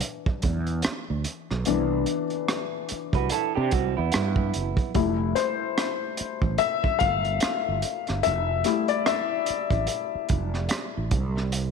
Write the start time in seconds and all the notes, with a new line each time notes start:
0.01 closed hi-hat
0.26 muted fretless electric bass stroke, kick
0.42 E2, kick, closed hi-hat
0.67 closed hi-hat
0.82 muted fretless electric bass stroke, cross-stick, closed hi-hat
1.10 D2
1.24 closed hi-hat
1.51 B1, cross-stick
1.65 C2 E3 B3 D4, closed hi-hat
2.06 closed hi-hat
2.30 closed hi-hat
2.48 cross-stick, closed hi-hat
2.89 muted fretless electric bass stroke, closed hi-hat
3.13 C2 F#4 B4, kick, closed hi-hat
3.29 E4 A4, closed hi-hat
3.55 C3 D4 G4
3.71 C2 C4 F#4, kick, closed hi-hat
3.97 E2 B3 E4
4.12 G2, cross-stick, closed hi-hat
4.36 kick
4.54 F#1, closed hi-hat
4.77 kick, closed hi-hat
4.94 F1 G3 A3 E4, kick, closed hi-hat
5.35 C5, cross-stick, closed hi-hat
5.78 cross-stick, closed hi-hat
6.17 muted fretless electric bass stroke, closed hi-hat
6.42 A1, kick
6.58 E5, closed hi-hat
6.84 muted fretless electric bass stroke, kick
6.99 G1 F5, kick, closed hi-hat
7.25 closed hi-hat
7.40 muted fretless electric bass stroke, cross-stick, closed hi-hat
7.68 G1
7.82 closed hi-hat
8.07 G1, cross-stick, closed hi-hat
8.23 F1 E5, closed hi-hat
8.64 G3 A3 E4, cross-stick, closed hi-hat
8.88 D5, closed hi-hat
9.06 E5, cross-stick, closed hi-hat
9.46 muted fretless electric bass stroke, closed hi-hat
9.71 A1, kick, closed hi-hat
9.87 closed hi-hat
10.15 muted fretless electric bass stroke
10.29 F1, kick, closed hi-hat
10.54 cross-stick
10.69 cross-stick, closed hi-hat
10.97 A1
11.11 C2, kick, closed hi-hat
11.37 cross-stick
11.52 closed hi-hat